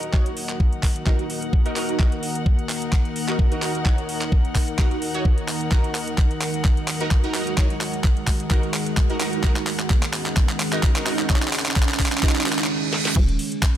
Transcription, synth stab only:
0.13 D#4 F#4 C#5
1.06 D#4 F#4 A#4
1.66 D#4 F#4 A#4
1.76 D#4 F#4 A#4
2.00 D#4 F#4 A#4
3.28 D#4 F#4 A#4
3.52 D#4 F#4 A#4
3.62 D#4 F#4 A#4
3.85 D#4 F#4 C#5
4.79 D#4 F#4 A#4
5.14 D#4 F#4 C#5
5.72 D#4 F#4 A#4
7.01 D#4 F#4 A#4
7.24 D#4 F#4 A#4
7.35 D#4 F#4 A#4
7.58 D#4 F#4 C#5
8.51 D#4 F#4 A#4
9.10 D#4 F#4 A#4
9.21 D#4 F#4 A#4
9.44 D#4 F#4 A#4
10.73 D#4 F#4 A#4
10.96 D#4 F#4 A#4
11.07 D#4 F#4 A#4
11.30 D#4 F#4 C#5
12.23 D#4 F#4 A#4

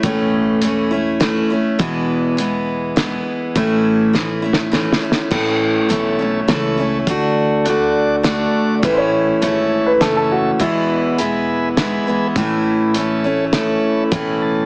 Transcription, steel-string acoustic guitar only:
0.03 A2 E3 A3 C#4 E4
0.61 E3 A3 C#4 E4
0.91 A3 C#4 E4
1.20 E3 A3 C#4 E4
1.50 A3 C#4 E4
1.79 E2 B2 E3 G#3 B3 E4
2.37 E3 G#3 B3 E4
2.96 E3 G#3 B3 E4
3.55 A2 E3 A3 C#4 E4
4.13 E3 A3 C#4 E4
4.42 A3 C#4 E4
4.72 E3 A3 C#4 E4
5.02 A3 C#4 E4
5.31 A2 E3 A3 C#4 E4
5.89 E3 A3 C#4 E4
6.19 A3 C#4 E4
6.48 E3 A3 C#4 E4
6.77 A3 C#4 E4
7.08 D3 A3 D4 F#4
7.66 D3 A3 D4 F#4
8.23 D3 A3 D4 F#4
8.83 A2 E3 A3 C#4 E4
9.42 E3 A3 C#4 E4
10.01 E3 A3 C#4 E4
10.59 E2 B2 E3 G#3 B3 E4
11.18 E3 G#3 B3 E4
11.78 E3 G#3 B3 E4
12.07 E3 G#3 B3 E4
12.37 A2 E3 A3 C#4 E4
12.95 E3 A3 C#4 E4
13.24 A3 C#4 E4
13.53 E3 A3 C#4 E4
14.12 A2 E3 A3 C#4 E4

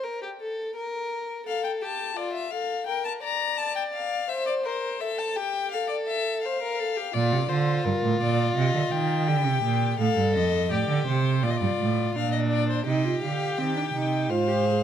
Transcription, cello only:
7.14 A#2
7.32 C3
7.49 D3
7.85 G2
8.03 A2
8.20 A#2
8.56 C3
8.74 D3
8.92 D#3
9.28 D3
9.45 C3
9.63 A#2
9.99 A2
10.17 G2
10.35 F2
10.71 A2
10.89 D3
11.07 C3
11.43 A#2
11.61 G2
11.79 A2
12.15 A#2
12.87 C3
13.23 D3
13.59 D#3
13.94 C3
14.29 G#2

